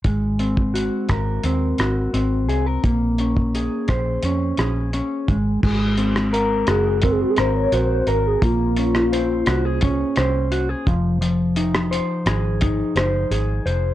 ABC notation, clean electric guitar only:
X:1
M:4/4
L:1/16
Q:1/4=86
K:Abmix
V:1 name="Clean electric guitar"
A,2 C2 G2 B2 C2 G2 C2 A B | B,2 D2 A2 c2 D2 A2 D2 A,2 | A,2 C2 B2 G2 C2 B2 G2 B2 | B,2 D2 c2 G A D2 c2 G A F,2 |
F,2 E2 c2 A2 E2 c2 A2 c2 |]